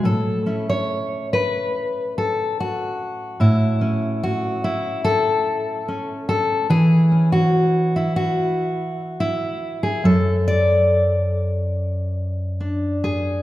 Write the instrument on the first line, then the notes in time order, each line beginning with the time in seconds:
steel-string acoustic guitar
0.03 A2 A4
0.46 C#4 E4
0.69 C#5
1.33 B4
2.18 A4
2.60 F#4
3.40 A2 E4
3.81 C#4
4.23 F#4
4.64 E4
5.05 A4
5.88 C#4
6.29 A4
6.70 E3 G#4
7.12 C#4
7.32 F#4
7.96 E4
8.16 F#4
9.20 E4
9.83 G#4
10.04 F#2 A4
10.48 D5
12.60 D4
13.04 G#4